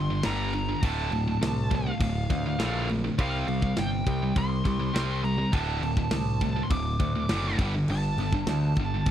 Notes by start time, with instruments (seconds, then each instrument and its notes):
Already playing: picked electric bass G1, lead electric guitar C6
0.10 distorted electric guitar G2 D3
0.23 picked electric bass G1, distorted electric guitar G2 D3 G3, lead electric guitar A#5, snare, crash
0.53 distorted electric guitar G2 D3, crash
0.69 distorted electric guitar G2 D3
0.82 picked electric bass D1, distorted electric guitar D2 A2 D3, lead electric guitar A5, kick, crash
1.11 picked electric bass D1, distorted electric guitar D2 A2, crash
1.27 distorted electric guitar D2 A2
1.41 picked electric bass C2, distorted electric guitar D2 A2, snare, crash
1.70 distorted electric guitar D2 A2, kick, crash
1.75 lead electric guitar F5
1.86 distorted electric guitar D2 A2
2.00 picked electric bass D1, distorted electric guitar D2 A2, kick, crash
2.30 picked electric bass D2, distorted electric guitar D2 A2, kick, crash
2.46 distorted electric guitar D2 A2
2.59 picked electric bass A#1, distorted electric guitar D2 A2 D3, snare, crash
2.89 distorted electric guitar D2 A2, crash
3.04 distorted electric guitar D2 A2
3.18 picked electric bass C2, distorted electric guitar C3 G3 C4, lead electric guitar F5, kick, crash
3.48 picked electric bass C2, distorted electric guitar C3 G3, crash
3.62 distorted electric guitar C3 G3, kick
3.77 picked electric bass G1, distorted electric guitar C3 G3, lead electric guitar G5, snare, crash
4.06 picked electric bass C2, distorted electric guitar C3 G3, kick, crash
4.22 distorted electric guitar C3 G3
4.36 picked electric bass C2, distorted electric guitar C3 G3, lead electric guitar C6, kick, crash
4.65 picked electric bass C2, distorted electric guitar C3 G3, kick, crash
4.80 distorted electric guitar C3 G3
4.94 picked electric bass C2, distorted electric guitar C3 G3 C4, snare, crash
5.23 distorted electric guitar C3 G3, lead electric guitar A#5, crash
5.38 distorted electric guitar C3 G3
5.52 picked electric bass D1, distorted electric guitar D2 A2 D3, lead electric guitar A5, kick, crash
5.81 picked electric bass D1, distorted electric guitar D2 A2, crash
5.97 distorted electric guitar D2 A2, kick
6.11 picked electric bass C2, distorted electric guitar D2 A2, snare, crash
6.41 distorted electric guitar D2 A2, kick, crash
6.56 distorted electric guitar D2 A2
6.63 lead electric guitar C6
6.70 picked electric bass D1, distorted electric guitar D2 A2, lead electric guitar D6, kick, crash
6.99 picked electric bass D2, distorted electric guitar D2 A2, kick, crash
7.15 distorted electric guitar D2 A2
7.29 picked electric bass F#1, distorted electric guitar D2 A2 D3, snare, crash
7.59 picked electric bass G1, distorted electric guitar G2 D3 G3, kick, crash
7.75 distorted electric guitar G2 D3
7.88 picked electric bass G1, distorted electric guitar G2 D3, lead electric guitar A5, crash
8.18 picked electric bass G1, distorted electric guitar G2 D3, crash
8.33 distorted electric guitar G2 D3, kick
8.47 picked electric bass D2, distorted electric guitar G2 D3, snare, crash
8.75 picked electric bass G1, kick, crash
8.80 distorted electric guitar G2 D3
8.94 distorted electric guitar G2 D3
9.06 picked electric bass G1, kick, crash